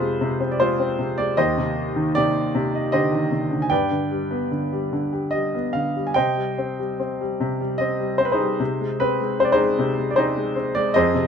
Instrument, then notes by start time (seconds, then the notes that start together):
grand piano
Already playing: F2 C3 G#3 C4 F4 G#4 B4 C5
0.02 G#3
0.21 C3
0.40 C4
0.52 D5
0.60 G#3 F4 G#4 C5
0.80 C4
0.99 C3
1.18 G#3 D5
1.37 D#2 G4 C5 D#5
1.57 C3
1.96 D#3
2.15 C3 G4 D5
2.55 C3
2.75 D#5
2.92 D3 G4 C5 D#5
3.12 D#3
3.31 C3
3.50 D3
3.62 G#5
3.70 G2 B4 D5 G5
3.91 D3
4.11 G3
4.31 B3
4.51 D3
4.72 G3
4.93 D3
5.13 G4
5.31 G3 D#5
5.55 B3
5.73 D3 F5
5.96 G3
6.07 G#5
6.14 C3 C5 D#5 G5
6.37 G3
6.58 C4
6.79 G3
7.00 C4
7.21 G3
7.40 C3
7.61 G3
7.78 C4 D#5
8.00 G3
8.18 C4 C5
8.25 B4
8.32 D#4 G#4 C5
8.40 G3
8.60 C3
8.80 G#3
9.00 C4 B4
9.21 G#3
9.40 C4 C5
9.45 D5
9.52 D#4 G#4 C5
9.60 G#3
9.79 C3
9.98 G#3
10.11 D5
10.16 C4 D#4 G#4 C5
10.37 G#3
10.56 C4
10.75 G#3 D5
10.94 F2 G#4 C5 D#5
11.14 C3